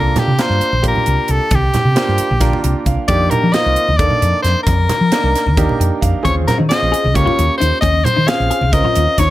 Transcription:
Already playing: C2 A#3 D4 F4 A4 A#4
0.16 G4, snare, closed hi-hat, low conga
0.28 C3
0.38 A#3 D4 F4 A#4 C5, snare, closed hi-hat
0.49 G2
0.61 muted fretless electric bass stroke, closed hi-hat
0.73 A#1, high conga
0.82 A#3 D4 F4 G4, kick, closed hi-hat
0.88 A#4
0.95 low conga
1.06 C2, closed hi-hat
1.28 C2 A4, closed hi-hat, low conga
1.51 C2 G4, kick, closed hi-hat, high conga, low conga
1.74 snare, closed hi-hat, low conga
1.85 C3
1.95 A#3 D4 F4 C5, snare, closed hi-hat
2.08 G2
2.18 muted fretless electric bass stroke, closed hi-hat
2.31 A#1, high conga
2.40 A#3 D4 F4 A#4, kick, snare, closed hi-hat
2.53 low conga
2.63 C2 A#5, closed hi-hat
2.86 C2 F5, kick, closed hi-hat
3.08 F2 A#3 D4 D#4 G4 D5, kick, closed hi-hat, high conga, low conga
3.30 A#4, closed hi-hat, low conga
3.43 F3
3.53 A#3 C4 D#4 F4 D#5, snare, closed hi-hat
3.66 C2
3.76 muted fretless electric bass stroke, closed hi-hat
3.88 D#2, high conga
3.97 A#3 D4 D#4 A4 D5, kick, closed hi-hat
4.10 low conga
4.22 F2, closed hi-hat
4.42 F2 C5, snare, closed hi-hat, low conga
4.63 F2 A#4, kick, closed hi-hat
4.68 high conga
4.79 low conga
4.89 snare, closed hi-hat, low conga
5.01 F3
5.12 A#3 D4 D#4 A#4, snare, closed hi-hat
5.23 C2
5.34 muted fretless electric bass stroke, snare, closed hi-hat, low conga
5.46 D#2, high conga, low conga
5.57 A#3 D4 D#4 G4, kick, closed hi-hat
5.69 low conga
5.79 F2 G5, closed hi-hat
6.01 F2 F5, kick, closed hi-hat
6.23 D#2 C4 C#4 F4 G#4 C#5, kick, closed hi-hat, high conga, low conga
6.48 A#4, snare, closed hi-hat, low conga
6.58 D#3 D#4
6.69 C4 C#4 F4 G#4 D#5, snare, closed hi-hat
6.82 A#1
6.92 G#4, closed hi-hat
7.04 C#2, high conga
7.14 A#3 C#4 F4 G4 C#5, kick, closed hi-hat
7.26 F4, low conga
7.39 D#2, closed hi-hat, low conga
7.57 D#2 D#4 C5, closed hi-hat, low conga
7.81 D#2 C#4 D#5, kick, closed hi-hat, high conga, low conga
8.04 C5, closed hi-hat, low conga
8.16 D#3 D#4
8.27 C4 C#4 F4 G#4 F5, snare, closed hi-hat
8.40 A#1
8.51 G#4, closed hi-hat
8.61 C#2, high conga
8.73 C4 C#4 F4 A#4 D#5, kick, closed hi-hat
8.84 F4, low conga
8.95 D#2, closed hi-hat, low conga
9.18 D#2 D#4 C#5, kick, snare, closed hi-hat, low conga

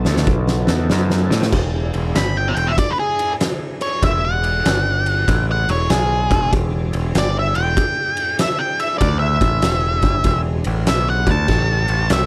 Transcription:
Already playing: B3 D#4 A4
0.05 D2, snare
0.17 snare
0.27 B1, kick
0.47 snare
0.67 E2, snare
0.90 F#2, snare
1.10 snare
1.24 A3 B3
1.29 A2 C4 D4, snare
1.34 E4 F4
1.40 G4 A4, snare
1.46 B4 C5
1.52 E1 D#4 F4 A4 D5, kick, crash
1.74 D4 E4 G#4
1.94 E1, ride
2.15 G1 B5, snare, ride
2.37 G5
2.48 E5
2.55 E1 G5, ride
2.68 E5
2.78 D5, kick, ride
2.91 B4
2.99 G#4
3.19 ride
3.41 snare, ride
3.81 C#5, ride
4.02 E1 E4 G#4 D5 E5, kick, ride
4.25 F#5
4.43 ride
4.64 G1 D4 G4 D5, snare, ride
5.06 ride
5.28 A1 E4 G#4 D5, kick, ride
5.52 F#5
5.69 E1 C#5, ride
5.90 B1 G#4, snare, ride
6.30 E1, kick, ride
6.53 E1, kick, ride
6.93 E1, ride
7.15 G1 D5, snare, ride
7.39 E5
7.55 E1 G5, ride
7.76 D4 E4 G#4, kick, ride
8.17 ride
8.39 E5, snare, ride
8.59 G5
8.79 E5, ride
8.98 D2 D5, kick, ride
9.19 E5
9.41 A1, kick, ride
9.62 E1, snare, ride
10.02 G1, kick, ride
10.21 E1 D4 E4 G#4, kick, ride
10.64 A1, ride
10.87 B1 E5, snare, ride
11.10 F#5
11.27 D2, kick, ride
11.31 A5
11.46 A1 G4 A4 C#5, kick, crash
11.88 A1, ride
12.10 C2 E5, snare, ride

